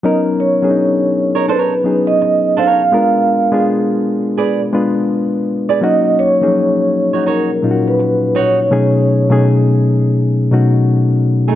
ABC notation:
X:1
M:4/4
L:1/16
Q:"Swing 16ths" 1/4=83
K:B
V:1 name="Vibraphone"
d2 c6 B3 d3 ^e2- | ^e4 z12 | d2 c6 A3 B3 c2- | c4 z12 |]
V:2 name="Nylon-string guitar"
z6 z [DAc] [DAc] z4 z [DAc] z | z8 [GB=d] z6 [GBd] | z6 z [DFc] [DFc] z4 z [DFc] z | z12 z3 [=A,DG] |]
V:3 name="Reed electric piano"
[F,B,CDA]2 z [F,B,C=D^DG]6 z [F,B,CDG]4- [F,B,CDG] z | [G,B,=D^EA]2 z [G,B,DEG]6 z [G,B,DEB]4- [G,B,DEB] z | [F,A,CDF]2 z [^E,F,A,CDG]6 z [A,,F,CD^EF]4- [A,,F,CDEF] z | [B,,F,=A,CDG]2 z [B,,F,A,CDG]6 z [B,,F,A,CDF]4- [B,,F,A,CDF] z |]